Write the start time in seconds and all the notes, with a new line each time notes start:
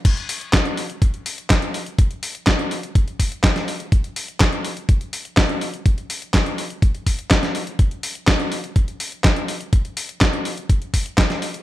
0.05 kick, closed hi-hat, crash
0.17 closed hi-hat
0.29 open hi-hat
0.41 closed hi-hat
0.53 kick, snare, clap, closed hi-hat
0.65 closed hi-hat
0.77 open hi-hat
0.90 closed hi-hat
1.02 kick, closed hi-hat
1.14 closed hi-hat
1.26 open hi-hat
1.38 closed hi-hat
1.50 kick, snare, clap, closed hi-hat
1.62 closed hi-hat
1.74 open hi-hat
1.86 closed hi-hat
1.99 kick, closed hi-hat
2.11 closed hi-hat
2.23 open hi-hat
2.35 closed hi-hat
2.47 kick, snare, clap, closed hi-hat
2.59 closed hi-hat
2.71 open hi-hat
2.83 closed hi-hat
2.95 kick, closed hi-hat
3.08 closed hi-hat
3.20 kick, open hi-hat
3.32 closed hi-hat
3.44 kick, snare, clap, closed hi-hat
3.56 snare, closed hi-hat
3.68 open hi-hat
3.80 closed hi-hat
3.92 kick, closed hi-hat
4.04 closed hi-hat
4.16 open hi-hat
4.28 closed hi-hat
4.40 kick, snare, clap, closed hi-hat
4.53 closed hi-hat
4.65 open hi-hat
4.77 closed hi-hat
4.89 kick, closed hi-hat
5.01 closed hi-hat
5.13 open hi-hat
5.25 closed hi-hat
5.37 kick, snare, clap, closed hi-hat
5.49 closed hi-hat
5.61 open hi-hat
5.74 closed hi-hat
5.86 kick, closed hi-hat
5.98 closed hi-hat
6.10 open hi-hat
6.22 closed hi-hat
6.34 kick, snare, clap, closed hi-hat
6.46 closed hi-hat
6.58 open hi-hat
6.70 closed hi-hat
6.82 kick, closed hi-hat
6.95 closed hi-hat
7.07 kick, open hi-hat
7.19 closed hi-hat
7.31 kick, snare, clap, closed hi-hat
7.43 snare, closed hi-hat
7.55 open hi-hat
7.67 closed hi-hat
7.79 kick, closed hi-hat
7.91 closed hi-hat
8.03 open hi-hat
8.15 closed hi-hat
8.27 kick, snare, clap, closed hi-hat
8.40 closed hi-hat
8.52 open hi-hat
8.64 closed hi-hat
8.76 kick, closed hi-hat
8.88 closed hi-hat
9.00 open hi-hat
9.12 closed hi-hat
9.24 kick, snare, clap, closed hi-hat
9.36 closed hi-hat
9.48 open hi-hat
9.61 closed hi-hat
9.73 kick, closed hi-hat
9.85 closed hi-hat
9.97 open hi-hat
10.09 closed hi-hat
10.21 kick, snare, clap, closed hi-hat
10.33 closed hi-hat
10.45 open hi-hat
10.57 closed hi-hat
10.69 kick, closed hi-hat
10.82 closed hi-hat
10.94 kick, open hi-hat
11.06 closed hi-hat
11.18 kick, snare, clap, closed hi-hat
11.30 snare, closed hi-hat
11.42 open hi-hat
11.54 closed hi-hat